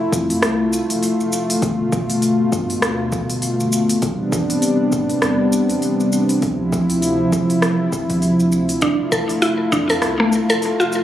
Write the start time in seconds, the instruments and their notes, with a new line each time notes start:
Already playing: analog synth pad A3 E4 F4
0.12 sub bass F2, kick, shaker
0.30 open hi-hat, shaker
0.42 sub bass C2, cross-stick, open hi-hat, shaker
0.73 shaker
0.90 sub bass F1, open hi-hat, shaker
1.03 open hi-hat, shaker
1.20 sub bass F1, shaker
1.33 shaker
1.50 open hi-hat, shaker
1.62 sub bass G1, analog synth pad B2, kick, open hi-hat, shaker
1.92 kick, shaker
2.10 sub bass G1, open hi-hat, shaker
2.22 open hi-hat, shaker
2.52 sub bass G2, kick, shaker
2.70 open hi-hat, shaker
2.82 sub bass D2, cross-stick, open hi-hat, shaker
3.12 kick, shaker
3.29 sub bass G1, open hi-hat, shaker
3.42 open hi-hat, shaker
3.60 sub bass G1, shaker
3.72 shaker
3.89 open hi-hat, shaker
4.02 sub bass A1, analog synth pad C3 G3 B3 D4, kick, open hi-hat, shaker
4.32 kick, shaker
4.50 sub bass A1, open hi-hat, shaker
4.62 open hi-hat, shaker
4.92 sub bass A2, kick, shaker
5.09 open hi-hat, shaker
5.22 sub bass E2, cross-stick, open hi-hat, shaker
5.53 shaker
5.70 sub bass A1, open hi-hat, shaker
5.82 open hi-hat, shaker
6.00 sub bass A1, shaker
6.13 shaker
6.29 open hi-hat, shaker
6.42 sub bass D2, analog synth pad F3 E4, kick, open hi-hat, shaker
6.73 kick, shaker
6.90 sub bass D2, open hi-hat, shaker
7.02 open hi-hat, shaker
7.32 sub bass D1, kick, shaker
7.50 open hi-hat, shaker
7.62 sub bass A1, cross-stick, open hi-hat, shaker
7.92 kick, shaker
8.10 sub bass D2, kick, open hi-hat, shaker
8.22 open hi-hat, shaker
8.40 sub bass D2, shaker
8.52 shaker
8.69 open hi-hat, shaker
8.81 sub bass F1, analog synth pad A3 E4 F4, synth pluck D4, kick, open hi-hat, shaker
9.12 synth pluck A4, kick, shaker
9.29 sub bass F1, open hi-hat, shaker
9.42 synth pluck E4, open hi-hat, shaker
9.72 sub bass F2, synth pluck D4, kick, shaker
9.89 synth pluck A4, open hi-hat, shaker
10.02 sub bass C2, cross-stick, open hi-hat, shaker
10.20 synth pluck A3
10.32 shaker
10.49 sub bass F1, synth pluck A4, open hi-hat, shaker
10.62 open hi-hat, shaker
10.80 sub bass F1, synth pluck F4, shaker
10.93 shaker